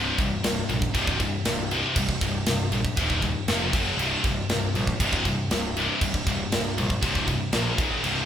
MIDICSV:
0, 0, Header, 1, 4, 480
1, 0, Start_track
1, 0, Key_signature, -3, "minor"
1, 0, Tempo, 505902
1, 1866, Time_signature, 4, 2, 24, 8
1, 7830, End_track
2, 0, Start_track
2, 0, Title_t, "Distorted electric guitar"
2, 0, Program_c, 0, 30
2, 0, Note_on_c, 0, 36, 83
2, 0, Note_on_c, 0, 43, 101
2, 0, Note_on_c, 0, 48, 100
2, 165, Note_off_c, 0, 36, 0
2, 169, Note_off_c, 0, 43, 0
2, 170, Note_off_c, 0, 48, 0
2, 177, Note_on_c, 0, 36, 81
2, 181, Note_on_c, 0, 43, 88
2, 397, Note_off_c, 0, 36, 0
2, 399, Note_off_c, 0, 43, 0
2, 413, Note_on_c, 0, 36, 76
2, 417, Note_on_c, 0, 43, 91
2, 635, Note_off_c, 0, 36, 0
2, 637, Note_off_c, 0, 43, 0
2, 654, Note_on_c, 0, 36, 84
2, 655, Note_on_c, 0, 43, 91
2, 876, Note_off_c, 0, 36, 0
2, 876, Note_off_c, 0, 43, 0
2, 891, Note_on_c, 0, 36, 97
2, 897, Note_on_c, 0, 43, 93
2, 907, Note_on_c, 0, 48, 106
2, 1124, Note_off_c, 0, 36, 0
2, 1127, Note_off_c, 0, 43, 0
2, 1132, Note_off_c, 0, 48, 0
2, 1141, Note_on_c, 0, 36, 68
2, 1143, Note_on_c, 0, 43, 86
2, 1359, Note_off_c, 0, 36, 0
2, 1360, Note_off_c, 0, 43, 0
2, 1384, Note_on_c, 0, 36, 85
2, 1387, Note_on_c, 0, 43, 100
2, 1601, Note_off_c, 0, 36, 0
2, 1602, Note_off_c, 0, 43, 0
2, 1625, Note_on_c, 0, 36, 89
2, 1632, Note_on_c, 0, 43, 93
2, 1638, Note_on_c, 0, 48, 103
2, 1851, Note_off_c, 0, 36, 0
2, 1855, Note_off_c, 0, 43, 0
2, 1858, Note_off_c, 0, 48, 0
2, 1869, Note_on_c, 0, 36, 82
2, 1874, Note_on_c, 0, 43, 86
2, 2083, Note_off_c, 0, 36, 0
2, 2086, Note_off_c, 0, 43, 0
2, 2108, Note_on_c, 0, 36, 80
2, 2111, Note_on_c, 0, 43, 87
2, 2323, Note_off_c, 0, 36, 0
2, 2324, Note_off_c, 0, 43, 0
2, 2345, Note_on_c, 0, 36, 77
2, 2349, Note_on_c, 0, 43, 92
2, 2562, Note_off_c, 0, 36, 0
2, 2563, Note_off_c, 0, 43, 0
2, 2588, Note_on_c, 0, 36, 74
2, 2589, Note_on_c, 0, 43, 81
2, 2803, Note_off_c, 0, 36, 0
2, 2804, Note_off_c, 0, 43, 0
2, 2821, Note_on_c, 0, 36, 80
2, 2827, Note_on_c, 0, 43, 88
2, 2834, Note_on_c, 0, 48, 87
2, 3049, Note_off_c, 0, 36, 0
2, 3052, Note_off_c, 0, 43, 0
2, 3056, Note_off_c, 0, 48, 0
2, 3065, Note_on_c, 0, 36, 72
2, 3068, Note_on_c, 0, 43, 82
2, 3282, Note_off_c, 0, 36, 0
2, 3283, Note_off_c, 0, 43, 0
2, 3307, Note_on_c, 0, 41, 93
2, 3315, Note_on_c, 0, 48, 94
2, 3319, Note_on_c, 0, 53, 101
2, 3532, Note_off_c, 0, 41, 0
2, 3536, Note_off_c, 0, 48, 0
2, 3538, Note_off_c, 0, 53, 0
2, 3543, Note_on_c, 0, 42, 89
2, 3549, Note_on_c, 0, 49, 92
2, 3555, Note_on_c, 0, 54, 95
2, 3770, Note_off_c, 0, 42, 0
2, 3773, Note_off_c, 0, 49, 0
2, 3776, Note_off_c, 0, 54, 0
2, 3778, Note_on_c, 0, 36, 83
2, 3787, Note_on_c, 0, 43, 94
2, 3794, Note_on_c, 0, 48, 104
2, 4007, Note_off_c, 0, 36, 0
2, 4012, Note_off_c, 0, 43, 0
2, 4016, Note_off_c, 0, 48, 0
2, 4034, Note_on_c, 0, 36, 77
2, 4036, Note_on_c, 0, 43, 99
2, 4246, Note_off_c, 0, 36, 0
2, 4247, Note_off_c, 0, 43, 0
2, 4273, Note_on_c, 0, 36, 76
2, 4276, Note_on_c, 0, 43, 77
2, 4485, Note_off_c, 0, 36, 0
2, 4487, Note_off_c, 0, 43, 0
2, 4514, Note_on_c, 0, 36, 82
2, 4514, Note_on_c, 0, 43, 86
2, 4726, Note_off_c, 0, 36, 0
2, 4726, Note_off_c, 0, 43, 0
2, 4751, Note_on_c, 0, 36, 93
2, 4760, Note_on_c, 0, 43, 96
2, 4763, Note_on_c, 0, 48, 110
2, 4974, Note_off_c, 0, 36, 0
2, 4978, Note_off_c, 0, 43, 0
2, 4980, Note_off_c, 0, 48, 0
2, 4992, Note_on_c, 0, 36, 76
2, 4998, Note_on_c, 0, 43, 80
2, 5205, Note_off_c, 0, 36, 0
2, 5208, Note_off_c, 0, 43, 0
2, 5235, Note_on_c, 0, 36, 79
2, 5240, Note_on_c, 0, 43, 93
2, 5446, Note_off_c, 0, 36, 0
2, 5449, Note_off_c, 0, 43, 0
2, 5472, Note_on_c, 0, 36, 84
2, 5478, Note_on_c, 0, 43, 96
2, 5486, Note_on_c, 0, 48, 105
2, 5694, Note_off_c, 0, 36, 0
2, 5697, Note_off_c, 0, 43, 0
2, 5702, Note_off_c, 0, 48, 0
2, 5714, Note_on_c, 0, 36, 82
2, 5721, Note_on_c, 0, 43, 88
2, 5926, Note_off_c, 0, 36, 0
2, 5929, Note_off_c, 0, 43, 0
2, 5956, Note_on_c, 0, 36, 80
2, 5960, Note_on_c, 0, 43, 78
2, 6167, Note_off_c, 0, 36, 0
2, 6169, Note_off_c, 0, 43, 0
2, 6192, Note_on_c, 0, 36, 81
2, 6195, Note_on_c, 0, 43, 89
2, 6405, Note_off_c, 0, 36, 0
2, 6406, Note_off_c, 0, 43, 0
2, 6432, Note_on_c, 0, 36, 86
2, 6436, Note_on_c, 0, 43, 96
2, 6645, Note_off_c, 0, 36, 0
2, 6647, Note_off_c, 0, 43, 0
2, 6667, Note_on_c, 0, 36, 94
2, 6672, Note_on_c, 0, 43, 95
2, 6677, Note_on_c, 0, 48, 100
2, 6892, Note_off_c, 0, 36, 0
2, 6894, Note_off_c, 0, 43, 0
2, 6897, Note_off_c, 0, 48, 0
2, 6906, Note_on_c, 0, 36, 73
2, 6913, Note_on_c, 0, 43, 77
2, 7122, Note_off_c, 0, 36, 0
2, 7125, Note_off_c, 0, 43, 0
2, 7146, Note_on_c, 0, 46, 91
2, 7150, Note_on_c, 0, 53, 101
2, 7158, Note_on_c, 0, 58, 103
2, 7371, Note_off_c, 0, 46, 0
2, 7374, Note_off_c, 0, 53, 0
2, 7378, Note_off_c, 0, 58, 0
2, 7385, Note_on_c, 0, 44, 86
2, 7394, Note_on_c, 0, 51, 100
2, 7396, Note_on_c, 0, 56, 94
2, 7611, Note_off_c, 0, 44, 0
2, 7616, Note_off_c, 0, 51, 0
2, 7617, Note_off_c, 0, 56, 0
2, 7626, Note_on_c, 0, 36, 101
2, 7634, Note_on_c, 0, 43, 94
2, 7640, Note_on_c, 0, 48, 102
2, 7830, Note_off_c, 0, 36, 0
2, 7830, Note_off_c, 0, 43, 0
2, 7830, Note_off_c, 0, 48, 0
2, 7830, End_track
3, 0, Start_track
3, 0, Title_t, "Picked electric bass"
3, 0, Program_c, 1, 34
3, 0, Note_on_c, 1, 24, 94
3, 107, Note_off_c, 1, 24, 0
3, 172, Note_on_c, 1, 24, 100
3, 343, Note_off_c, 1, 24, 0
3, 418, Note_on_c, 1, 24, 95
3, 587, Note_off_c, 1, 24, 0
3, 659, Note_on_c, 1, 34, 88
3, 827, Note_off_c, 1, 34, 0
3, 897, Note_on_c, 1, 24, 101
3, 1233, Note_off_c, 1, 24, 0
3, 1380, Note_on_c, 1, 24, 88
3, 1715, Note_off_c, 1, 24, 0
3, 1860, Note_on_c, 1, 24, 98
3, 2028, Note_off_c, 1, 24, 0
3, 2102, Note_on_c, 1, 24, 95
3, 2269, Note_off_c, 1, 24, 0
3, 2338, Note_on_c, 1, 24, 86
3, 2507, Note_off_c, 1, 24, 0
3, 2574, Note_on_c, 1, 34, 86
3, 2744, Note_off_c, 1, 34, 0
3, 2821, Note_on_c, 1, 27, 97
3, 3155, Note_off_c, 1, 27, 0
3, 3296, Note_on_c, 1, 29, 88
3, 3544, Note_off_c, 1, 29, 0
3, 3544, Note_on_c, 1, 30, 89
3, 3711, Note_off_c, 1, 30, 0
3, 3770, Note_on_c, 1, 24, 95
3, 3942, Note_off_c, 1, 24, 0
3, 4023, Note_on_c, 1, 24, 97
3, 4190, Note_off_c, 1, 24, 0
3, 4257, Note_on_c, 1, 24, 90
3, 4426, Note_off_c, 1, 24, 0
3, 4500, Note_on_c, 1, 34, 97
3, 4668, Note_off_c, 1, 34, 0
3, 4742, Note_on_c, 1, 24, 101
3, 5076, Note_off_c, 1, 24, 0
3, 5226, Note_on_c, 1, 24, 97
3, 5558, Note_off_c, 1, 24, 0
3, 5708, Note_on_c, 1, 24, 95
3, 5873, Note_off_c, 1, 24, 0
3, 5946, Note_on_c, 1, 24, 98
3, 6112, Note_off_c, 1, 24, 0
3, 6181, Note_on_c, 1, 24, 87
3, 6349, Note_off_c, 1, 24, 0
3, 6420, Note_on_c, 1, 34, 97
3, 6588, Note_off_c, 1, 34, 0
3, 6663, Note_on_c, 1, 24, 98
3, 6996, Note_off_c, 1, 24, 0
3, 7142, Note_on_c, 1, 34, 94
3, 7310, Note_off_c, 1, 34, 0
3, 7381, Note_on_c, 1, 32, 90
3, 7549, Note_off_c, 1, 32, 0
3, 7622, Note_on_c, 1, 24, 94
3, 7789, Note_off_c, 1, 24, 0
3, 7830, End_track
4, 0, Start_track
4, 0, Title_t, "Drums"
4, 175, Note_on_c, 9, 49, 65
4, 176, Note_on_c, 9, 36, 91
4, 270, Note_off_c, 9, 36, 0
4, 270, Note_off_c, 9, 49, 0
4, 417, Note_on_c, 9, 49, 88
4, 422, Note_on_c, 9, 38, 119
4, 512, Note_off_c, 9, 49, 0
4, 517, Note_off_c, 9, 38, 0
4, 659, Note_on_c, 9, 49, 60
4, 754, Note_off_c, 9, 49, 0
4, 777, Note_on_c, 9, 36, 87
4, 872, Note_off_c, 9, 36, 0
4, 898, Note_on_c, 9, 36, 101
4, 898, Note_on_c, 9, 49, 85
4, 993, Note_off_c, 9, 36, 0
4, 993, Note_off_c, 9, 49, 0
4, 1019, Note_on_c, 9, 36, 94
4, 1114, Note_off_c, 9, 36, 0
4, 1138, Note_on_c, 9, 36, 82
4, 1139, Note_on_c, 9, 49, 57
4, 1233, Note_off_c, 9, 36, 0
4, 1234, Note_off_c, 9, 49, 0
4, 1377, Note_on_c, 9, 49, 85
4, 1382, Note_on_c, 9, 38, 106
4, 1472, Note_off_c, 9, 49, 0
4, 1477, Note_off_c, 9, 38, 0
4, 1623, Note_on_c, 9, 49, 65
4, 1718, Note_off_c, 9, 49, 0
4, 1857, Note_on_c, 9, 49, 87
4, 1860, Note_on_c, 9, 36, 107
4, 1952, Note_off_c, 9, 49, 0
4, 1955, Note_off_c, 9, 36, 0
4, 1980, Note_on_c, 9, 36, 82
4, 2074, Note_off_c, 9, 36, 0
4, 2098, Note_on_c, 9, 49, 72
4, 2100, Note_on_c, 9, 36, 97
4, 2193, Note_off_c, 9, 49, 0
4, 2195, Note_off_c, 9, 36, 0
4, 2336, Note_on_c, 9, 49, 86
4, 2341, Note_on_c, 9, 38, 112
4, 2431, Note_off_c, 9, 49, 0
4, 2436, Note_off_c, 9, 38, 0
4, 2578, Note_on_c, 9, 49, 67
4, 2673, Note_off_c, 9, 49, 0
4, 2700, Note_on_c, 9, 36, 83
4, 2795, Note_off_c, 9, 36, 0
4, 2815, Note_on_c, 9, 49, 90
4, 2820, Note_on_c, 9, 36, 108
4, 2910, Note_off_c, 9, 49, 0
4, 2915, Note_off_c, 9, 36, 0
4, 2940, Note_on_c, 9, 36, 90
4, 3035, Note_off_c, 9, 36, 0
4, 3053, Note_on_c, 9, 49, 59
4, 3060, Note_on_c, 9, 36, 75
4, 3148, Note_off_c, 9, 49, 0
4, 3154, Note_off_c, 9, 36, 0
4, 3300, Note_on_c, 9, 49, 74
4, 3304, Note_on_c, 9, 38, 108
4, 3395, Note_off_c, 9, 49, 0
4, 3399, Note_off_c, 9, 38, 0
4, 3540, Note_on_c, 9, 49, 97
4, 3542, Note_on_c, 9, 36, 106
4, 3635, Note_off_c, 9, 49, 0
4, 3637, Note_off_c, 9, 36, 0
4, 3786, Note_on_c, 9, 49, 80
4, 3881, Note_off_c, 9, 49, 0
4, 4023, Note_on_c, 9, 49, 66
4, 4024, Note_on_c, 9, 36, 93
4, 4118, Note_off_c, 9, 49, 0
4, 4119, Note_off_c, 9, 36, 0
4, 4264, Note_on_c, 9, 49, 81
4, 4268, Note_on_c, 9, 38, 112
4, 4359, Note_off_c, 9, 49, 0
4, 4363, Note_off_c, 9, 38, 0
4, 4506, Note_on_c, 9, 49, 61
4, 4601, Note_off_c, 9, 49, 0
4, 4625, Note_on_c, 9, 36, 83
4, 4720, Note_off_c, 9, 36, 0
4, 4744, Note_on_c, 9, 36, 101
4, 4748, Note_on_c, 9, 49, 88
4, 4839, Note_off_c, 9, 36, 0
4, 4843, Note_off_c, 9, 49, 0
4, 4864, Note_on_c, 9, 36, 92
4, 4959, Note_off_c, 9, 36, 0
4, 4984, Note_on_c, 9, 36, 77
4, 4984, Note_on_c, 9, 49, 55
4, 5079, Note_off_c, 9, 36, 0
4, 5079, Note_off_c, 9, 49, 0
4, 5225, Note_on_c, 9, 49, 83
4, 5230, Note_on_c, 9, 38, 104
4, 5320, Note_off_c, 9, 49, 0
4, 5325, Note_off_c, 9, 38, 0
4, 5470, Note_on_c, 9, 49, 65
4, 5565, Note_off_c, 9, 49, 0
4, 5706, Note_on_c, 9, 36, 114
4, 5709, Note_on_c, 9, 49, 84
4, 5801, Note_off_c, 9, 36, 0
4, 5804, Note_off_c, 9, 49, 0
4, 5827, Note_on_c, 9, 36, 81
4, 5921, Note_off_c, 9, 36, 0
4, 5946, Note_on_c, 9, 36, 93
4, 5949, Note_on_c, 9, 49, 69
4, 6041, Note_off_c, 9, 36, 0
4, 6044, Note_off_c, 9, 49, 0
4, 6186, Note_on_c, 9, 49, 88
4, 6191, Note_on_c, 9, 38, 119
4, 6281, Note_off_c, 9, 49, 0
4, 6286, Note_off_c, 9, 38, 0
4, 6432, Note_on_c, 9, 49, 71
4, 6527, Note_off_c, 9, 49, 0
4, 6547, Note_on_c, 9, 36, 87
4, 6642, Note_off_c, 9, 36, 0
4, 6666, Note_on_c, 9, 36, 104
4, 6666, Note_on_c, 9, 49, 88
4, 6761, Note_off_c, 9, 36, 0
4, 6761, Note_off_c, 9, 49, 0
4, 6787, Note_on_c, 9, 36, 94
4, 6881, Note_off_c, 9, 36, 0
4, 6903, Note_on_c, 9, 49, 56
4, 6905, Note_on_c, 9, 36, 79
4, 6998, Note_off_c, 9, 49, 0
4, 6999, Note_off_c, 9, 36, 0
4, 7140, Note_on_c, 9, 49, 85
4, 7144, Note_on_c, 9, 38, 115
4, 7234, Note_off_c, 9, 49, 0
4, 7239, Note_off_c, 9, 38, 0
4, 7385, Note_on_c, 9, 36, 117
4, 7387, Note_on_c, 9, 49, 68
4, 7480, Note_off_c, 9, 36, 0
4, 7482, Note_off_c, 9, 49, 0
4, 7626, Note_on_c, 9, 49, 83
4, 7720, Note_off_c, 9, 49, 0
4, 7830, End_track
0, 0, End_of_file